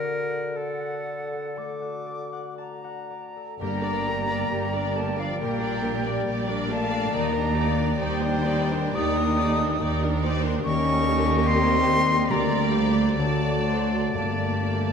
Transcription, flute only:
0.00 0.44 F#5 soft
0.57 1.59 F#5 soft
1.57 2.58 D6 soft
2.59 3.58 A#5 soft
3.59 4.98 A#5 medium
4.96 5.20 A5 medium
5.19 5.41 F5 medium
5.39 6.46 G5 medium
6.69 7.16 A5 medium
7.14 8.03 A#5 medium
8.02 8.96 G5 medium
8.95 10.23 D#6 medium
10.64 11.49 C#6 loud
11.47 12.32 C6 loud
12.31 13.21 A#5 medium
13.20 14.15 A5 medium
14.16 14.93 A5 medium

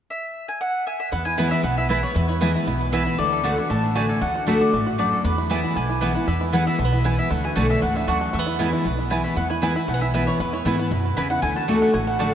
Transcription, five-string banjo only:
1.12 1.37 B3 medium
1.26 1.50 E4 medium
1.38 1.63 B3 medium
1.51 1.76 E4 medium
1.64 2.00 B3 medium
1.77 1.89 E4 soft
1.90 2.26 E4 medium
2.03 2.14 B3 medium
2.16 2.52 B3 medium
2.29 2.40 E4 medium
2.41 2.54 E4 medium
2.55 2.66 E4 medium
2.67 3.04 E4 medium
2.81 3.16 B3 medium
2.93 3.19 E3 medium
3.06 3.19 E4 medium
3.19 3.43 A3 medium
3.32 3.68 A4 medium
3.44 3.69 A3 medium
3.58 3.93 F#4 medium
3.70 4.07 A3 medium
3.84 4.19 D4 medium
3.96 4.32 F#4 medium
4.09 4.45 A4 medium
4.21 4.46 A3 medium
4.35 4.60 F#4 medium
4.47 4.72 A3 medium
4.61 4.85 F#4 medium
4.74 5.10 A3 medium
4.87 5.22 F#4 medium
4.99 5.25 D4 medium
5.12 5.25 A4 medium
5.25 5.49 B3 medium
5.38 5.63 E4 medium
5.50 5.75 B3 medium
5.64 5.88 E4 medium
5.76 6.13 B3 medium
5.89 6.01 E4 medium
6.02 6.14 E4 soft
6.15 6.40 E4 medium
6.28 6.52 B3 medium
6.41 6.66 E4 medium
6.53 6.79 B3 medium
6.67 6.91 E4 medium
6.79 6.85 A3 medium
6.85 7.05 B3 medium
6.93 7.04 E4 medium
7.05 7.17 E4 medium
7.18 7.31 E4 medium
7.31 7.55 A3 medium
7.44 7.80 F#4 medium
7.56 7.81 A3 medium
7.70 7.94 D4 medium
7.82 8.19 A3 medium
7.95 8.31 D4 medium
8.08 8.34 F#4 medium
8.21 8.32 A3 medium
8.33 8.39 A3 medium
8.39 8.58 B3 medium
8.47 8.72 E4 medium
8.59 8.84 B3 medium
8.73 8.98 E4 medium
8.85 9.22 B3 medium
8.99 9.10 E4 medium
9.11 9.37 E4 medium
9.25 9.36 B3 medium
9.37 9.73 B3 medium
9.50 9.62 E4 medium
9.63 9.75 E4 medium
9.76 10.01 E4 medium
9.88 9.94 A3 medium
9.94 10.13 B3 medium
10.02 10.27 E4 medium
10.14 10.39 B3 medium
10.28 10.52 E4 medium
10.40 10.76 B3 medium
10.53 10.65 E4 medium
10.66 10.91 E4 medium
10.79 11.04 B3 medium
10.92 11.16 E4 medium
11.05 11.41 B3 medium
11.17 11.30 E4 medium
11.31 11.43 E4 medium
11.43 11.79 A3 medium
11.56 11.92 F#4 medium
11.68 12.05 A4 medium
11.82 12.06 A3 medium
11.94 12.30 F#4 medium
12.07 12.34 A3 medium
12.20 12.34 D4 medium

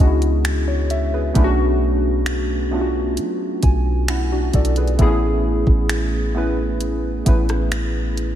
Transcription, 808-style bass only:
0.00 1.31 C#2 loud
1.36 3.20 B1 loud
3.18 3.61 F#3 medium
3.63 4.50 B1 loud
4.54 4.97 B1 loud
4.99 5.65 A1 loud
5.67 7.22 A1 medium
7.27 8.35 A1 loud

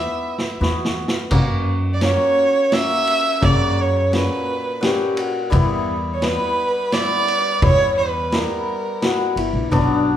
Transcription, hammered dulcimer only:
0.00 0.27 B3 medium
0.00 0.27 E4 medium
0.00 0.27 G4 medium
0.61 0.97 B3 medium
0.61 0.97 E4 medium
0.61 0.97 F#4 medium
1.31 1.67 A#3 loud
1.31 1.67 C#4 medium
1.31 1.67 F#4 medium
2.03 2.38 A#3 medium
2.03 2.38 C#4 medium
2.03 2.38 F#4 medium
2.72 3.08 A#3 medium
2.72 3.07 C#4 medium
2.72 3.07 F#4 medium
3.41 4.18 C#3 medium
3.41 3.77 A#3 medium
3.41 3.77 F#4 medium
4.11 4.79 A#2 medium
4.11 4.47 C#4 medium
4.11 4.47 F#4 medium
4.80 5.57 A#2 medium
4.80 5.17 C#4 medium
4.80 5.17 F#5 medium
5.50 6.21 G3 medium
5.50 5.87 B3 medium
5.50 5.87 E4 medium
6.22 6.92 G3 medium
6.22 6.58 B3 medium
6.22 6.57 E4 medium
6.93 7.61 G3 medium
6.93 7.27 B3 medium
6.93 7.27 E4 medium
7.61 8.31 G3 medium
7.61 7.97 B3 medium
7.61 7.97 E4 medium
8.31 9.01 G3 medium
8.31 8.66 B3 soft
8.31 8.67 E4 medium
9.02 9.76 G3 medium
9.02 9.37 B3 medium
9.02 9.37 E4 medium
9.71 10.17 F#3 medium
9.71 10.06 B3 medium
9.71 10.06 D4 loud

